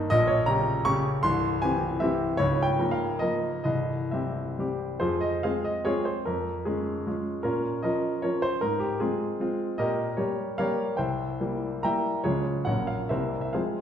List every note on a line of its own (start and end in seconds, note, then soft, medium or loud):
0.10 1.21 A#1 medium
0.10 1.21 A#2 medium
0.10 0.29 D#5 loud
0.27 0.47 C#5 medium
0.46 0.82 C#3 medium
0.46 0.83 C#4 medium
0.46 0.83 G4 medium
0.46 0.86 A#5 loud
0.85 1.20 C#3 medium
0.85 1.21 C#4 medium
0.85 1.21 G4 medium
0.85 1.24 C#6 loud
1.23 2.36 C1 medium
1.23 2.36 C2 medium
1.23 1.61 C6 loud
1.62 1.98 E3 medium
1.62 1.98 C4 medium
1.62 1.98 G4 medium
1.62 2.01 G#5 loud
2.00 2.35 E3 medium
2.00 2.36 C4 medium
2.00 2.36 G4 medium
2.00 2.38 E5 medium
2.37 3.61 C#1 medium
2.37 3.61 C#2 medium
2.37 2.64 C#5 loud
2.63 2.92 G5 medium
2.79 3.17 F3 soft
2.79 3.17 A#3 soft
2.79 3.17 A#4 soft
2.91 3.20 F5 medium
3.19 3.61 F3 soft
3.19 3.61 A#3 soft
3.19 3.61 A#4 medium
3.19 3.62 D#5 medium
3.64 4.98 C1 soft
3.64 4.98 C2 medium
3.64 4.12 D#5 medium
4.11 4.55 G3 soft
4.11 4.55 C4 soft
4.11 4.55 G4 soft
4.11 4.80 E5 medium
4.58 4.97 G3 soft
4.58 4.98 C4 soft
4.58 4.98 G4 soft
5.00 5.42 F2 medium
5.00 5.20 F4 medium
5.00 5.20 G#4 medium
5.00 5.21 C5 medium
5.21 5.43 D#5 medium
5.43 5.82 G#3 soft
5.43 5.83 C4 soft
5.43 5.83 F4 soft
5.43 5.64 G#4 medium
5.43 5.64 C5 soft
5.43 5.65 F5 medium
5.64 5.85 D#5 medium
5.85 6.23 G#3 soft
5.85 6.23 C4 soft
5.85 6.05 F4 medium
5.85 6.05 G#4 medium
5.85 6.06 C#5 medium
6.05 6.26 C5 medium
6.25 6.65 F2 medium
6.25 6.66 A#4 medium
6.65 7.03 G#3 soft
6.65 7.05 C#4 soft
6.65 7.06 F4 soft
6.65 7.26 G#4 medium
7.07 7.41 G#3 soft
7.07 7.41 C#4 soft
7.07 7.41 F4 soft
7.43 7.82 A#2 soft
7.43 7.80 C#4 medium
7.43 7.80 F4 medium
7.43 7.82 A#4 medium
7.83 8.19 F3 soft
7.83 8.19 C#4 soft
7.83 8.20 F4 soft
7.83 8.21 A#4 medium
7.83 8.22 D#5 medium
8.22 8.58 F3 soft
8.22 8.58 C#4 soft
8.22 8.41 F4 soft
8.22 8.41 A#4 soft
8.22 8.42 C#5 medium
8.42 8.61 C5 medium
8.61 9.00 G#2 soft
8.61 8.80 A#4 medium
8.80 9.00 G4 medium
9.00 9.37 G#3 soft
9.00 9.39 C4 soft
9.00 9.40 F4 medium
9.00 9.60 G#4 medium
9.40 9.75 G#3 soft
9.40 9.75 C4 soft
9.40 9.76 F4 soft
9.78 10.17 A#2 medium
9.78 10.16 G4 medium
9.78 10.16 A#4 medium
9.78 10.18 D#5 medium
10.17 10.55 G3 soft
10.17 10.56 A#3 soft
10.17 10.56 G4 soft
10.17 10.56 A#4 soft
10.17 10.58 C#5 medium
10.58 10.95 G3 soft
10.58 10.95 A#3 soft
10.58 10.95 G4 soft
10.58 10.96 A#4 medium
10.58 10.96 C#5 medium
10.58 10.98 F5 medium
10.97 11.39 C2 medium
10.97 11.80 C5 medium
10.97 11.80 E5 soft
10.97 11.83 G5 medium
11.41 11.80 G3 soft
11.41 11.80 A#3 soft
11.41 11.81 E4 soft
11.83 12.20 G3 soft
11.83 12.20 A#3 soft
11.83 12.21 E4 soft
11.83 12.21 E5 medium
11.83 12.21 G5 medium
11.83 12.23 A#5 medium
12.24 12.66 C#2 soft
12.24 12.63 F3 soft
12.24 12.63 G#3 soft
12.24 12.64 C#4 soft
12.24 12.64 F4 medium
12.24 12.64 G#4 medium
12.24 12.65 C#5 medium
12.65 13.09 A#1 soft
12.65 13.07 F#3 soft
12.65 13.07 A#3 soft
12.65 13.07 C#4 soft
12.65 12.87 A#4 soft
12.65 12.87 C#5 soft
12.65 12.88 F#5 medium
12.87 13.10 F5 medium
13.09 13.53 C2 soft
13.09 13.50 G3 soft
13.09 13.51 A#3 soft
13.09 13.51 C4 soft
13.09 13.41 A#4 soft
13.09 13.41 C5 soft
13.09 13.40 E5 medium
13.41 13.53 E5 medium
13.53 13.81 F3 soft
13.53 13.81 G#3 soft
13.53 13.81 C4 soft
13.53 13.81 G#4 soft
13.53 13.81 C5 soft
13.53 13.81 F5 medium